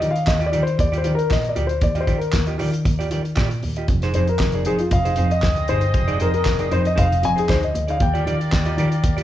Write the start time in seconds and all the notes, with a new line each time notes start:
Already playing: D#5
0.00 D#3 F4 G4 D5, closed hi-hat
0.11 F5, muted clean electric guitar stroke
0.16 closed hi-hat
0.26 D#2 D#5, muted clean electric guitar stroke, kick, snare, clap
0.39 F4 G4 D#5, closed hi-hat
0.46 D5
0.52 D#3 F4 G4 D5, closed hi-hat
0.63 C5, muted clean electric guitar stroke
0.67 closed hi-hat
0.78 D#2 D5, muted clean electric guitar stroke, kick, closed hi-hat
0.92 F4 G4 D5, closed hi-hat
0.98 C5
1.04 D#3 F4 G4 D5, closed hi-hat
1.15 A#4, muted clean electric guitar stroke, closed hi-hat
1.29 A#2 D#5, muted clean electric guitar stroke, kick, snare, clap
1.43 muted clean electric guitar stroke, closed hi-hat
1.49 D5
1.56 D2 F4 G4 D5, closed hi-hat
1.67 C5, closed hi-hat
1.81 D#2 D5, muted clean electric guitar stroke, kick, closed hi-hat
1.95 F4 G4 D#5, closed hi-hat
2.00 C5
2.07 D#3 F4 G4 D5, kick, closed hi-hat
2.18 A#4, muted clean electric guitar stroke, closed hi-hat
2.33 D#2, muted clean electric guitar stroke, kick, snare, clap
2.47 F4 G4 D#5, closed hi-hat
2.58 D#3 F4 G4 D5, open hi-hat
2.73 muted clean electric guitar stroke, closed hi-hat
2.85 D#2, muted clean electric guitar stroke, kick, closed hi-hat
2.99 F4 G4 D5, closed hi-hat
3.11 D#3 F4 G4 D5, closed hi-hat
3.25 muted clean electric guitar stroke, closed hi-hat
3.36 A#2 F4 G4 D5, kick, snare, clap
3.51 muted clean electric guitar stroke, closed hi-hat
3.63 D#2, muted clean electric guitar stroke, open hi-hat
3.76 F4 G4 D#5, closed hi-hat
3.88 F1, muted clean electric guitar stroke, kick, closed hi-hat
4.02 D#4 G#4 C5, snare, closed hi-hat
4.14 F2 D#4 G#4 C5, closed hi-hat
4.28 A#4, muted clean electric guitar stroke, closed hi-hat
4.39 F1, muted clean electric guitar stroke, kick, snare, clap
4.52 D#4 G#4 D5, closed hi-hat
4.65 F2 D#4 G#4 C5, closed hi-hat
4.79 F4, muted clean electric guitar stroke, closed hi-hat
4.91 F1 C4 G#4 D#5 F5, muted clean electric guitar stroke, kick, closed hi-hat
5.05 D#4 G#4 C5, closed hi-hat
5.16 F2 D#4 G#4 C5, closed hi-hat
5.30 D#5, muted clean electric guitar stroke, closed hi-hat
5.42 D2, muted clean electric guitar stroke, kick, snare, clap
5.56 muted clean electric guitar stroke, closed hi-hat
5.68 G1 D#4 G#4 C5, closed hi-hat
5.81 muted clean electric guitar stroke, closed hi-hat
5.94 F1, muted clean electric guitar stroke, kick, closed hi-hat
6.08 D#4 G#4 D5, closed hi-hat
6.20 F2 D#4 G#4 A#4 C5, closed hi-hat
6.34 A#4, muted clean electric guitar stroke, closed hi-hat
6.45 F1, muted clean electric guitar stroke, kick, snare, clap
6.59 D#4 G#4 D5, closed hi-hat
6.71 F2 D#4 G#4 C5, closed hi-hat
6.85 D#5, muted clean electric guitar stroke, closed hi-hat
6.96 F1 D#4 G#4 C5 F5, kick, closed hi-hat
7.10 muted clean electric guitar stroke, closed hi-hat
7.22 F2 G#5, muted clean electric guitar stroke, closed hi-hat
7.36 D#4 G#4 C5, closed hi-hat
7.48 D2 D#4 G#4 C5, kick, snare, clap
7.62 D#5, muted clean electric guitar stroke, closed hi-hat
7.74 D2, muted clean electric guitar stroke, closed hi-hat
7.88 D#4 G#4 D5 F5, closed hi-hat
8.00 D#2 A#3 G4 D5 G5, muted clean electric guitar stroke, kick, closed hi-hat
8.14 F4 G4 D5, closed hi-hat
8.26 D#3 F4 G4 D5, closed hi-hat
8.40 muted clean electric guitar stroke, closed hi-hat
8.52 D#2, muted clean electric guitar stroke, kick, snare, clap
8.66 F4 G4 D#5, closed hi-hat
8.78 D#3 F4 G4 D5, closed hi-hat
8.92 muted clean electric guitar stroke, closed hi-hat
9.04 D#2, muted clean electric guitar stroke, kick, closed hi-hat
9.17 F4 G4 D5, closed hi-hat